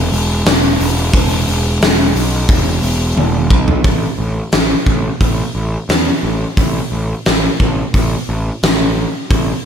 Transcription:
0.12 E1, open hi-hat
0.46 E1, snare, open hi-hat
0.79 E1, open hi-hat
1.13 E1, kick, open hi-hat
1.48 E1, open hi-hat
1.81 E1, snare, open hi-hat
2.14 B1, open hi-hat
2.49 E1, kick, open hi-hat
2.82 E1, open hi-hat
3.17 E1, high tom
3.50 B1, kick
3.68 floor tom
3.84 A1, kick, open hi-hat
4.18 A1
4.52 A1, snare, open hi-hat
4.86 A1, kick
5.21 A1, kick, open hi-hat
5.55 A1
5.89 E2, snare, open hi-hat
6.23 A1
6.57 A1, kick, open hi-hat
6.92 A1
7.26 A1, snare, open hi-hat
7.60 A1, kick
7.94 A1, kick, open hi-hat
8.29 A1
8.63 A1, snare, open hi-hat
9.31 A1, kick, open hi-hat

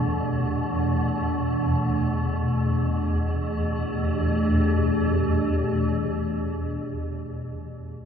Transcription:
Already playing: E2 B2 E3 A3 D4 G4
2.92 E2 B2 E3
3.09 A3
3.24 D4
3.39 G4

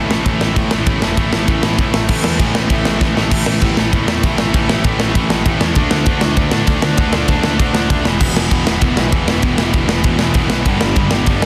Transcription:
Already playing: A2 E3 A3 C#4 E4
0.10 A1 A2 E3 A3, snare
0.25 A1 A2 E3 A3, kick, ride
0.41 A1 A2 E3 A3, snare
0.56 A2 E3 A3, kick, ride
0.71 A1 A2 E3 A3 C#4 E4, snare
0.86 A1 A2 E3 A3, kick, ride
1.02 E1 A2 E3 A3, snare
1.17 A1 A2 E3 A3 C#4 E4, kick, ride
1.32 A1 A2 E3 A3, snare
1.47 A1 A2 E3 A3, kick, ride
1.63 A1 A2 E3 A3, snare
1.78 A2 E3 A3, kick, ride
1.94 A1 A2 E3 A3, snare
2.09 A1 A2 E3 A3 C#4 E4, kick, crash
2.24 E2, snare
2.38 A1 A2 E3 A3, kick, ride
2.54 A1 A2 E3 A3, snare
2.69 A1 A2 E3 A3, kick, ride
2.85 A1, snare
2.99 A1 A2 E3 A3, kick, snare
3.15 A1 A2 E3 A3 C#4 E4, snare
3.30 A1 A2 E3 A3 C#4 E4 A4, kick, crash
3.46 A1 A2 E3 A3, snare
3.61 A1 A2 E3 A3, kick, ride
3.77 A1 A2 E3 A3, snare
3.93 A1 A2 E3 A3, kick, ride
4.07 E2 A2 E3 A3, snare
4.23 A1 A2 E3 A3, kick, ride
4.38 A1 A2 E3 A3, snare
4.54 A1 A2 E3 A3 C#4 E4 A4, kick, ride
4.69 A1 A2 E3 A3, snare
4.84 A1 A2 E3 A3, kick, ride
5.00 A2 E3 A3, snare
5.15 A1 A2 E3 A3, kick, ride
5.30 A2 E3 A3, snare
5.46 A1 A2 E3 A3, kick, ride
5.60 E2 A2 E3 A3, snare
5.75 D2 D3 A3 D4 F#4, kick, ride
5.91 D2 D3 A3 D4, snare
6.06 D2 D3 A3 D4, kick, ride
6.21 D2 D3 A3 D4, snare
6.37 D2 D3 A3 D4, kick, ride
6.51 A2 D3 A3 D4, snare
6.67 D2 D3 A3 D4, kick, ride
6.82 D2 D3 A3 D4, snare
6.97 D2 D3 A3 D4 F#4, kick, ride
7.13 D2 D3 A3 D4, snare
7.28 D2 D3 A3 D4, kick, ride
7.43 D3 A3 D4, snare
7.60 D2 D3 A3 D4, kick, ride
7.75 D3 A3 D4, snare
7.90 D2 D3 A3 D4, kick, ride
8.05 E1 E2 B2 E3 G3 B3 E4, snare
8.21 E1 E2 B2 E3, kick, crash
8.36 E1 E2 B2 E3, snare
8.51 E1 E2 B2 E3, kick, ride
8.66 E1 E2 B2 E3, snare
8.81 E1 E2 B2 E3, kick, ride
8.97 B1 E2 B2 E3, snare
9.12 E1 E2 B2 E3, kick, ride
9.27 E1 E2 B2 E3 G3 B3 E4, snare
9.42 E1 E2 B2 E3, kick, ride
9.58 E1 E2 B2 E3, snare
9.73 E1 E2 B2 E3, kick, ride
9.89 E2 B2 E3, snare
10.04 E1 E2 B2 E3, kick, ride
10.19 E2 B2 E3, snare
10.34 E1 E2 B2 E3, kick, ride
10.50 B1 E2 B2 E3, snare
10.65 G1 G2 D3 G3 B3 D4, kick, ride
10.81 G1 G2 D3 G3, snare
10.96 G1 G2 D3 G3, kick, ride
11.11 G1 G2 D3 G3, snare
11.26 G1 G2 D3 G3, kick, ride
11.42 D2 D3 G3, snare

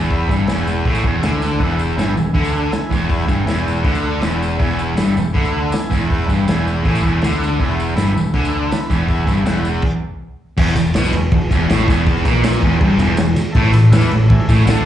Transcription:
Already playing: E1 E2
0.09 B4 E5 B5, kick, open hi-hat
0.29 G1 G2, kick, tambourine
0.46 E1 E2 B4 E5 G#5, snare, open hi-hat, tambourine
0.67 tambourine
0.85 A1 A2 B4 E5 G#5, kick, open hi-hat
0.95 tambourine
1.03 E1 E2, kick
1.20 D2 D3 B4 E5 G#5, snare, open hi-hat, tambourine
1.42 tambourine
1.59 E1 E2 B4 E5 F#5, kick, open hi-hat
1.79 tambourine
1.97 G1 G2 B4 E5 G#5, snare, open hi-hat, tambourine
2.16 E1 E2, tambourine
2.33 D2 D3 B4 E5 G#5, kick, open hi-hat
2.45 tambourine
2.71 B4 E5 G#5, muted distorted electric guitar stroke, muted picked electric bass stroke, snare, open hi-hat, tambourine
2.90 E1 E2, kick, tambourine
3.09 B4 E5 G#5, kick, open hi-hat, tambourine
3.20 tambourine
3.27 G1 G2, kick, tambourine
3.45 E1 E2 B4 E5 G#5, snare, open hi-hat, tambourine
3.59 tambourine
3.68 tambourine
3.77 tambourine
3.84 D2 D3 B4 E5 F#5, kick, open hi-hat
3.95 tambourine
4.04 tambourine
4.21 E1 E2 B4 E5 F#5, snare, open hi-hat, tambourine
4.33 tambourine
4.43 tambourine
4.51 tambourine
4.58 E1 E2 B4 E5 G#5, kick, open hi-hat
4.79 tambourine
4.96 G1 G2 B4 E5 B5, snare, open hi-hat, tambourine
5.16 E1 E2, tambourine
5.33 D2 D3 B4 E5 B5, kick, open hi-hat
5.45 tambourine
5.70 B4 E5 G#5, muted distorted electric guitar stroke, muted picked electric bass stroke, snare, open hi-hat, tambourine
5.90 E1 E2, kick, tambourine
6.07 B4 E5 F#5, kick, open hi-hat
6.28 G1 G2, kick, tambourine
6.46 E1 E2 B4 E5 G#5, snare, open hi-hat, tambourine
6.68 tambourine
6.84 A1 A2 B4 E5 G#5, kick, open hi-hat
6.95 tambourine
7.03 E1 E2, kick
7.21 D2 D3 B4 E5 F#5, snare, open hi-hat, tambourine
7.43 tambourine
7.58 E1 E2 B4 E5 F#5, kick, open hi-hat
7.80 tambourine
7.95 G1 G2 B4 E5 B5, snare, open hi-hat, tambourine
8.14 E1 E2, tambourine
8.33 D2 D3 B4 E5 G#5, kick, open hi-hat
8.45 tambourine
8.69 B4 E5 B5, muted distorted electric guitar stroke, muted picked electric bass stroke, snare, open hi-hat, tambourine
8.90 E1 E2, kick, tambourine
9.08 B4 E5 G#5, kick, open hi-hat, tambourine
9.26 G1 G2, kick, tambourine
9.38 tambourine
9.45 E1 E2 B4 E5 F#5, snare, open hi-hat, tambourine
9.57 tambourine
9.65 tambourine
9.74 tambourine
9.82 kick, crash
10.57 E1 E2, kick, crash, tambourine
10.68 tambourine
10.76 E1 E2, ride, tambourine
10.94 B1 B2, snare, ride, tambourine
11.05 tambourine
11.13 E1 E2, ride
11.32 E1 E2, kick, ride
11.51 E1 E2, kick, ride, tambourine
11.68 A1 A2, snare, ride, tambourine
11.81 tambourine
11.87 E1 E2, kick, ride, tambourine
11.99 tambourine
12.06 kick, ride, tambourine
12.17 tambourine
12.24 A#1 A#2, kick, ride, tambourine
12.43 snare, ride, tambourine
12.53 tambourine
12.62 E1 E2, kick, ride
12.80 G1 G2, kick, ride
12.98 E1 E2, ride, tambourine
13.17 E1 E2, snare, ride, tambourine
13.27 tambourine
13.36 muted distorted electric guitar stroke, muted picked electric bass stroke, ride, tambourine
13.45 tambourine
13.52 A1 A2 A4 E5 A5, kick, ride, tambourine
13.64 tambourine
13.73 A1 A2, ride, tambourine
13.91 E2 E3 A4 E5 B5, snare, ride, tambourine
14.01 tambourine
14.11 A1 A2, ride
14.27 A1 A2 A4 E5 G#5, kick, ride
14.49 A1 A2, kick, ride, tambourine
14.66 D2 D3 A4 E5 A5, snare, ride, tambourine
14.77 tambourine

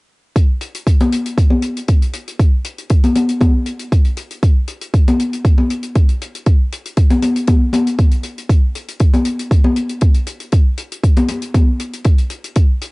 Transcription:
0.36 kick, closed hi-hat
0.61 closed hi-hat
0.75 closed hi-hat
0.87 kick, closed hi-hat
1.00 closed hi-hat, high conga
1.12 closed hi-hat
1.26 closed hi-hat
1.38 kick, closed hi-hat
1.50 high conga
1.62 closed hi-hat
1.77 closed hi-hat
1.88 kick, closed hi-hat
2.02 closed hi-hat
2.13 closed hi-hat
2.28 closed hi-hat
2.39 kick, closed hi-hat
2.64 closed hi-hat
2.78 closed hi-hat
2.89 kick, closed hi-hat
3.03 closed hi-hat, high conga
3.15 closed hi-hat, high conga
3.29 closed hi-hat
3.41 kick, closed hi-hat, high conga
3.66 closed hi-hat
3.79 closed hi-hat
3.92 kick, closed hi-hat
4.04 closed hi-hat
4.17 closed hi-hat
4.31 closed hi-hat
4.42 kick, closed hi-hat
4.68 closed hi-hat
4.81 closed hi-hat
4.94 kick, closed hi-hat
5.08 closed hi-hat, high conga
5.19 closed hi-hat
5.33 closed hi-hat
5.45 kick, closed hi-hat
5.58 high conga
5.70 closed hi-hat
5.83 closed hi-hat
5.95 kick, closed hi-hat
6.09 closed hi-hat
6.21 closed hi-hat
6.35 closed hi-hat
6.46 kick, closed hi-hat
6.72 closed hi-hat
6.86 closed hi-hat
6.97 kick, closed hi-hat
7.10 closed hi-hat, high conga
7.22 closed hi-hat, high conga
7.36 closed hi-hat
7.47 kick, closed hi-hat, high conga
7.73 closed hi-hat, high conga
7.87 closed hi-hat
7.98 kick, closed hi-hat
8.11 closed hi-hat
8.23 closed hi-hat
8.38 closed hi-hat
8.49 kick, closed hi-hat
8.75 closed hi-hat
8.88 closed hi-hat
8.99 kick, closed hi-hat
9.14 closed hi-hat, high conga
9.25 closed hi-hat
9.39 closed hi-hat
9.51 kick, closed hi-hat
9.64 high conga
9.76 closed hi-hat
9.89 closed hi-hat
10.01 kick, closed hi-hat
10.14 closed hi-hat
10.27 closed hi-hat
10.40 closed hi-hat
10.52 kick, closed hi-hat
10.78 closed hi-hat
10.92 closed hi-hat
11.04 kick, closed hi-hat
11.16 closed hi-hat, high conga
11.28 closed hi-hat, high conga
11.42 closed hi-hat
11.54 kick, closed hi-hat, high conga
11.80 closed hi-hat
11.93 closed hi-hat
12.04 kick, closed hi-hat
12.18 closed hi-hat
12.30 closed hi-hat
12.44 closed hi-hat
12.55 kick, closed hi-hat
12.81 closed hi-hat

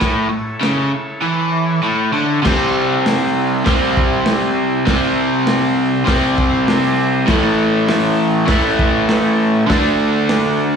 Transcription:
Already playing: E4 A4 C#5
0.00 A2, kick, snare, crash
0.30 A2
0.61 C#3, snare, crash
1.22 E3
1.83 A2
2.13 D3
2.42 C3 G3 E4 G4 C5, kick, snare, crash
2.47 C4
3.06 snare, open hi-hat
3.65 C3 G3, kick, snare, open hi-hat
3.69 C4
3.97 kick
4.26 snare, open hi-hat
4.85 C3 G3, kick, snare, open hi-hat
4.90 C4
5.47 snare, open hi-hat
6.05 C3 G3, kick, snare, open hi-hat
6.10 C4
6.38 kick
6.68 snare, open hi-hat
7.26 A2 E3 E4 A4 C#5, kick, snare, open hi-hat
7.31 A3
7.89 snare, open hi-hat
8.46 A2 E3, kick, snare, open hi-hat
8.51 A3
8.79 kick
9.09 snare, open hi-hat
9.67 D3 A3 F#4 A4 D5, kick, snare, open hi-hat
9.72 D4
10.29 snare, open hi-hat

